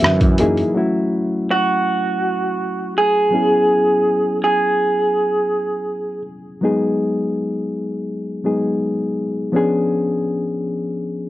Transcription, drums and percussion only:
0.04 cross-stick loud
0.04 high conga medium
0.21 kick medium
0.21 closed hi-hat soft
0.21 muted conga soft
0.21 high conga medium
0.38 closed hi-hat medium
0.38 low conga medium
0.57 closed hi-hat soft

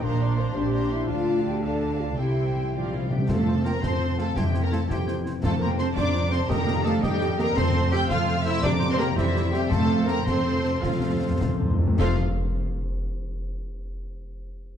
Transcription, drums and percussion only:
3.29 concert bass drum medium
3.29 snare medium
3.29 crash soft
3.65 snare medium
3.83 concert bass drum medium
3.83 snare medium
4.19 snare soft
4.36 concert bass drum medium
4.36 snare medium
4.54 snare medium
4.73 snare medium
4.90 concert bass drum medium
4.90 snare medium
5.08 snare medium
5.26 snare soft
5.43 concert bass drum medium
5.43 snare medium
5.79 snare medium
5.97 concert bass drum medium
5.97 snare medium
6.32 snare medium
6.50 concert bass drum medium
6.50 snare medium
6.68 snare medium
6.86 snare medium
7.03 concert bass drum medium
7.03 snare medium
7.21 snare medium
7.39 snare soft
7.57 concert bass drum medium
7.57 snare medium
7.57 crash soft
7.93 snare medium
8.10 concert bass drum medium
8.10 snare medium
8.46 snare medium
8.64 concert bass drum medium
8.64 snare medium
8.81 snare medium
9.00 snare medium
9.18 concert bass drum medium
9.18 snare medium
9.36 snare medium
9.54 snare medium
9.72 concert bass drum medium
9.72 snare medium
10.08 snare medium
10.27 concert bass drum medium
10.27 snare medium
10.64 snare soft
10.83 concert bass drum medium
10.83 snare medium
11.41 concert bass drum medium
11.41 snare medium
12.00 concert bass drum loud
12.00 snare loud
12.00 crash medium

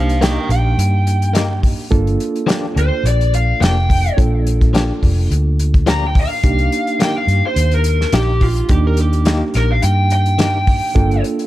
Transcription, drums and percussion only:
0.09 closed hi-hat soft
0.22 snare loud
0.22 closed hi-hat medium
0.50 closed hi-hat medium
0.79 closed hi-hat medium
1.07 closed hi-hat medium
1.22 closed hi-hat soft
1.35 snare loud
1.35 closed hi-hat medium
1.63 kick medium
1.63 open hi-hat medium
1.92 kick medium
1.92 closed hi-hat medium
2.07 closed hi-hat soft
2.20 closed hi-hat medium
2.36 closed hi-hat soft
2.49 snare loud
2.49 closed hi-hat medium
2.77 closed hi-hat medium
3.06 closed hi-hat medium
3.21 closed hi-hat soft
3.34 closed hi-hat medium
3.62 snare loud
3.62 closed hi-hat medium
3.90 kick medium
3.90 open hi-hat medium
4.06 closed hi-hat soft
4.18 kick loud
4.18 closed hi-hat medium
4.47 closed hi-hat medium
4.61 kick medium
4.61 closed hi-hat soft
4.75 snare loud
4.75 closed hi-hat medium
5.03 kick medium
5.03 open hi-hat medium
5.31 closed hi-hat medium
5.59 closed hi-hat medium
5.74 kick medium
5.74 closed hi-hat soft
5.87 snare loud
5.87 closed hi-hat medium
6.15 kick medium
6.15 open hi-hat medium
6.43 kick loud
6.43 closed hi-hat medium
6.59 closed hi-hat soft
6.72 closed hi-hat medium
6.87 closed hi-hat soft
7.00 snare loud
7.00 closed hi-hat medium
7.28 closed hi-hat medium
7.56 closed hi-hat medium
7.71 closed hi-hat soft
7.84 closed hi-hat medium
8.01 snare soft
8.12 snare loud
8.12 closed hi-hat medium
8.41 kick medium
8.41 open hi-hat medium
8.56 closed hi-hat soft
8.69 kick loud
8.69 closed hi-hat medium
8.97 closed hi-hat medium
9.13 closed hi-hat soft
9.25 snare loud
9.25 closed hi-hat medium
9.54 snare soft
9.54 closed hi-hat medium
9.82 closed hi-hat medium
10.10 closed hi-hat medium
10.26 closed hi-hat soft
10.39 snare loud
10.39 closed hi-hat medium
10.67 kick medium
10.67 open hi-hat medium
10.96 kick loud
10.96 closed hi-hat medium
11.11 closed hi-hat soft
11.24 closed hi-hat medium
11.39 closed hi-hat soft

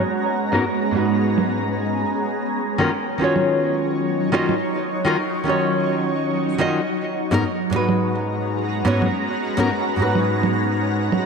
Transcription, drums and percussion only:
1.38 low conga medium
3.36 low conga medium
4.49 low conga medium
7.89 low conga medium
9.02 low conga medium
10.15 low conga medium
10.43 low conga medium
11.12 low conga medium

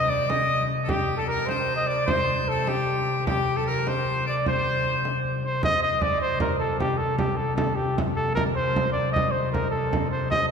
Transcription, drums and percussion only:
0.30 frame drum medium
0.50 frame drum soft
0.70 frame drum soft
0.89 frame drum medium
1.09 frame drum soft
1.30 frame drum soft
1.49 frame drum medium
2.08 frame drum medium
2.28 frame drum soft
2.48 frame drum soft
2.67 frame drum medium
3.27 frame drum medium
3.68 frame drum soft
3.87 frame drum medium
4.46 frame drum medium
4.85 frame drum soft
5.05 frame drum medium
5.24 frame drum soft
5.63 frame drum medium
6.02 frame drum medium
6.40 frame drum medium
6.80 frame drum medium
7.19 frame drum medium
7.58 frame drum medium
7.98 frame drum medium
8.37 frame drum medium
8.76 frame drum medium
9.16 frame drum medium
9.54 frame drum medium
9.93 frame drum medium
10.32 frame drum medium

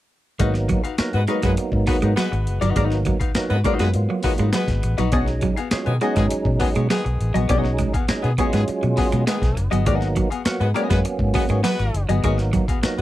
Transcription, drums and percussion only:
0.39 kick loud
0.39 closed hi-hat loud
0.54 snare soft
0.54 closed hi-hat soft
0.69 kick medium
0.69 closed hi-hat medium
0.85 closed hi-hat medium
0.98 snare loud
0.98 closed hi-hat loud
1.13 closed hi-hat soft
1.28 closed hi-hat medium
1.42 kick medium
1.42 snare soft
1.42 closed hi-hat medium
1.57 closed hi-hat loud
1.72 kick medium
1.87 kick loud
1.87 open hi-hat medium
2.02 closed hi-hat soft
2.17 snare loud
2.17 closed hi-hat medium
2.33 closed hi-hat soft
2.47 closed hi-hat medium
2.62 closed hi-hat medium
2.76 kick loud
2.76 closed hi-hat medium
2.91 snare soft
2.91 closed hi-hat soft
3.05 kick medium
3.05 closed hi-hat medium
3.21 kick loud
3.21 closed hi-hat soft
3.35 snare loud
3.35 closed hi-hat loud
3.50 closed hi-hat soft
3.64 kick loud
3.64 closed hi-hat medium
3.79 snare soft
3.79 closed hi-hat medium
3.94 closed hi-hat loud
4.23 kick loud
4.23 open hi-hat medium
4.38 closed hi-hat medium
4.53 snare loud
4.53 closed hi-hat medium
4.68 kick medium
4.68 snare soft
4.68 closed hi-hat soft
4.83 closed hi-hat medium
4.98 closed hi-hat medium
5.12 kick loud
5.12 closed hi-hat loud
5.26 snare soft
5.26 closed hi-hat soft
5.41 kick medium
5.41 closed hi-hat medium
5.57 closed hi-hat medium
5.71 snare loud
5.71 closed hi-hat medium
5.86 closed hi-hat soft
6.01 closed hi-hat medium
6.16 kick medium
6.16 snare soft
6.16 closed hi-hat medium
6.30 closed hi-hat loud
6.45 kick medium
6.60 kick loud
6.60 open hi-hat medium
6.75 closed hi-hat soft
6.90 snare medium
6.90 closed hi-hat loud
7.06 closed hi-hat soft
7.21 closed hi-hat medium
7.35 closed hi-hat medium
7.49 kick loud
7.49 closed hi-hat loud
7.64 snare soft
7.78 kick medium
7.78 closed hi-hat medium
7.94 kick loud
7.94 closed hi-hat soft
8.08 snare loud
8.08 closed hi-hat medium
8.24 closed hi-hat soft
8.38 kick medium
8.38 closed hi-hat medium
8.53 snare soft
8.53 closed hi-hat medium
8.68 closed hi-hat loud
8.83 closed hi-hat soft
8.97 kick loud
8.97 open hi-hat medium
9.12 closed hi-hat medium
9.27 snare loud
9.27 closed hi-hat medium
9.42 kick medium
9.42 snare soft
9.42 closed hi-hat soft
9.57 closed hi-hat medium
9.73 closed hi-hat medium
9.86 kick loud
9.86 closed hi-hat loud
10.01 snare soft
10.01 closed hi-hat soft
10.16 kick medium
10.16 closed hi-hat medium
10.32 closed hi-hat medium
10.45 snare loud
10.45 closed hi-hat loud
10.61 closed hi-hat soft
10.76 closed hi-hat medium
10.90 kick medium
10.90 snare soft
10.90 closed hi-hat medium
11.05 closed hi-hat loud
11.19 kick medium
11.34 kick loud
11.34 open hi-hat medium
11.49 closed hi-hat soft
11.64 snare medium
11.64 closed hi-hat medium
11.80 closed hi-hat soft
11.94 closed hi-hat medium
12.09 closed hi-hat medium
12.24 kick loud
12.24 closed hi-hat medium
12.38 snare soft
12.38 closed hi-hat soft
12.53 kick medium
12.53 closed hi-hat medium
12.68 kick medium
12.68 closed hi-hat soft
12.83 snare loud
12.83 closed hi-hat loud

